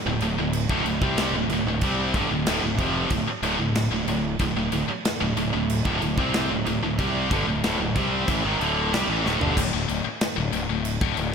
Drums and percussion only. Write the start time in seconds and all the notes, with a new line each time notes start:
0.20 crash
0.53 crash
0.69 kick
0.86 crash
1.02 kick
1.18 snare, crash
1.50 crash
1.81 kick, crash
2.14 kick, crash
2.46 snare, crash
2.79 kick, crash
3.10 kick, crash
3.43 crash
3.75 snare, crash
4.08 crash
4.39 kick, crash
4.72 crash
5.05 snare, crash
5.37 crash
5.70 crash
5.85 kick
6.02 crash
6.18 kick
6.34 snare, crash
6.66 crash
6.99 kick, crash
7.31 kick, crash
7.64 snare, crash
7.96 kick, crash
8.28 kick, crash
8.61 crash
8.94 snare, crash
9.26 snare
9.41 floor tom
9.57 kick, crash
9.89 crash
10.21 snare, crash
10.53 crash
10.85 crash
11.01 kick
11.17 crash